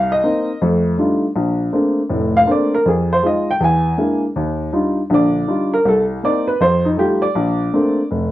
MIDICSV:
0, 0, Header, 1, 2, 480
1, 0, Start_track
1, 0, Key_signature, -2, "major"
1, 0, Tempo, 375235
1, 1718, Time_signature, 4, 2, 24, 8
1, 10637, End_track
2, 0, Start_track
2, 0, Title_t, "Upright piano"
2, 0, Program_c, 0, 0
2, 0, Note_on_c, 0, 36, 80
2, 0, Note_on_c, 0, 77, 90
2, 136, Note_off_c, 0, 77, 0
2, 154, Note_on_c, 0, 75, 98
2, 232, Note_off_c, 0, 36, 0
2, 298, Note_on_c, 0, 58, 50
2, 304, Note_on_c, 0, 60, 49
2, 310, Note_on_c, 0, 63, 63
2, 623, Note_off_c, 0, 58, 0
2, 625, Note_off_c, 0, 60, 0
2, 629, Note_off_c, 0, 63, 0
2, 733, Note_off_c, 0, 75, 0
2, 786, Note_on_c, 0, 41, 75
2, 788, Note_on_c, 0, 57, 66
2, 1189, Note_off_c, 0, 41, 0
2, 1190, Note_off_c, 0, 57, 0
2, 1247, Note_on_c, 0, 55, 53
2, 1250, Note_on_c, 0, 57, 47
2, 1258, Note_on_c, 0, 62, 51
2, 1259, Note_on_c, 0, 63, 49
2, 1266, Note_on_c, 0, 65, 55
2, 1577, Note_off_c, 0, 55, 0
2, 1578, Note_off_c, 0, 57, 0
2, 1582, Note_off_c, 0, 62, 0
2, 1582, Note_off_c, 0, 63, 0
2, 1586, Note_off_c, 0, 65, 0
2, 1732, Note_on_c, 0, 34, 69
2, 2142, Note_off_c, 0, 34, 0
2, 2211, Note_on_c, 0, 57, 50
2, 2212, Note_on_c, 0, 60, 44
2, 2214, Note_on_c, 0, 58, 48
2, 2216, Note_on_c, 0, 62, 58
2, 2538, Note_off_c, 0, 57, 0
2, 2539, Note_off_c, 0, 60, 0
2, 2540, Note_off_c, 0, 58, 0
2, 2541, Note_off_c, 0, 62, 0
2, 2677, Note_on_c, 0, 45, 65
2, 2678, Note_on_c, 0, 29, 71
2, 3025, Note_on_c, 0, 77, 93
2, 3094, Note_off_c, 0, 29, 0
2, 3094, Note_off_c, 0, 45, 0
2, 3147, Note_on_c, 0, 57, 47
2, 3151, Note_on_c, 0, 60, 50
2, 3158, Note_on_c, 0, 58, 46
2, 3160, Note_on_c, 0, 62, 57
2, 3168, Note_off_c, 0, 77, 0
2, 3214, Note_on_c, 0, 74, 74
2, 3486, Note_off_c, 0, 57, 0
2, 3488, Note_off_c, 0, 60, 0
2, 3492, Note_off_c, 0, 58, 0
2, 3493, Note_off_c, 0, 62, 0
2, 3495, Note_off_c, 0, 74, 0
2, 3510, Note_on_c, 0, 70, 86
2, 3650, Note_off_c, 0, 70, 0
2, 3652, Note_on_c, 0, 41, 66
2, 3690, Note_on_c, 0, 68, 69
2, 3973, Note_off_c, 0, 68, 0
2, 3997, Note_on_c, 0, 72, 90
2, 4062, Note_off_c, 0, 41, 0
2, 4127, Note_on_c, 0, 56, 54
2, 4132, Note_on_c, 0, 63, 49
2, 4134, Note_off_c, 0, 72, 0
2, 4139, Note_on_c, 0, 65, 56
2, 4174, Note_on_c, 0, 75, 82
2, 4455, Note_off_c, 0, 75, 0
2, 4456, Note_off_c, 0, 56, 0
2, 4459, Note_off_c, 0, 63, 0
2, 4462, Note_off_c, 0, 65, 0
2, 4482, Note_on_c, 0, 79, 92
2, 4607, Note_on_c, 0, 40, 68
2, 4617, Note_off_c, 0, 79, 0
2, 4655, Note_on_c, 0, 80, 84
2, 5019, Note_off_c, 0, 40, 0
2, 5083, Note_on_c, 0, 58, 45
2, 5087, Note_on_c, 0, 56, 54
2, 5089, Note_on_c, 0, 62, 48
2, 5095, Note_on_c, 0, 64, 54
2, 5373, Note_off_c, 0, 80, 0
2, 5414, Note_off_c, 0, 58, 0
2, 5417, Note_off_c, 0, 56, 0
2, 5418, Note_off_c, 0, 62, 0
2, 5420, Note_off_c, 0, 64, 0
2, 5574, Note_on_c, 0, 39, 69
2, 5983, Note_off_c, 0, 39, 0
2, 6039, Note_on_c, 0, 62, 46
2, 6042, Note_on_c, 0, 55, 52
2, 6047, Note_on_c, 0, 63, 52
2, 6055, Note_on_c, 0, 65, 56
2, 6372, Note_off_c, 0, 62, 0
2, 6374, Note_off_c, 0, 55, 0
2, 6376, Note_off_c, 0, 63, 0
2, 6381, Note_off_c, 0, 65, 0
2, 6523, Note_on_c, 0, 34, 76
2, 6527, Note_on_c, 0, 50, 69
2, 6575, Note_on_c, 0, 74, 76
2, 6937, Note_off_c, 0, 34, 0
2, 6939, Note_off_c, 0, 50, 0
2, 7005, Note_on_c, 0, 62, 47
2, 7005, Note_on_c, 0, 63, 47
2, 7007, Note_on_c, 0, 55, 52
2, 7017, Note_on_c, 0, 65, 57
2, 7293, Note_off_c, 0, 74, 0
2, 7335, Note_off_c, 0, 62, 0
2, 7336, Note_off_c, 0, 63, 0
2, 7337, Note_off_c, 0, 55, 0
2, 7337, Note_on_c, 0, 70, 91
2, 7342, Note_off_c, 0, 65, 0
2, 7484, Note_off_c, 0, 70, 0
2, 7486, Note_on_c, 0, 36, 72
2, 7524, Note_on_c, 0, 69, 91
2, 7701, Note_off_c, 0, 69, 0
2, 7899, Note_off_c, 0, 36, 0
2, 7972, Note_on_c, 0, 58, 49
2, 7978, Note_on_c, 0, 60, 48
2, 7990, Note_on_c, 0, 63, 62
2, 7990, Note_on_c, 0, 74, 86
2, 8282, Note_on_c, 0, 71, 86
2, 8283, Note_off_c, 0, 74, 0
2, 8299, Note_off_c, 0, 58, 0
2, 8302, Note_off_c, 0, 60, 0
2, 8308, Note_off_c, 0, 63, 0
2, 8436, Note_off_c, 0, 71, 0
2, 8447, Note_on_c, 0, 41, 69
2, 8462, Note_on_c, 0, 72, 90
2, 8758, Note_off_c, 0, 72, 0
2, 8766, Note_on_c, 0, 63, 67
2, 8859, Note_off_c, 0, 41, 0
2, 8902, Note_off_c, 0, 63, 0
2, 8921, Note_on_c, 0, 55, 49
2, 8921, Note_on_c, 0, 57, 49
2, 8921, Note_on_c, 0, 63, 46
2, 8934, Note_on_c, 0, 65, 54
2, 8944, Note_on_c, 0, 67, 83
2, 9236, Note_on_c, 0, 74, 81
2, 9240, Note_off_c, 0, 67, 0
2, 9253, Note_off_c, 0, 57, 0
2, 9254, Note_off_c, 0, 55, 0
2, 9254, Note_off_c, 0, 63, 0
2, 9260, Note_off_c, 0, 65, 0
2, 9408, Note_on_c, 0, 34, 71
2, 9819, Note_off_c, 0, 34, 0
2, 9891, Note_on_c, 0, 57, 56
2, 9896, Note_on_c, 0, 58, 51
2, 9898, Note_on_c, 0, 60, 50
2, 9899, Note_on_c, 0, 62, 55
2, 10218, Note_off_c, 0, 57, 0
2, 10221, Note_off_c, 0, 58, 0
2, 10222, Note_off_c, 0, 60, 0
2, 10222, Note_off_c, 0, 62, 0
2, 10307, Note_off_c, 0, 74, 0
2, 10372, Note_on_c, 0, 29, 71
2, 10637, Note_off_c, 0, 29, 0
2, 10637, End_track
0, 0, End_of_file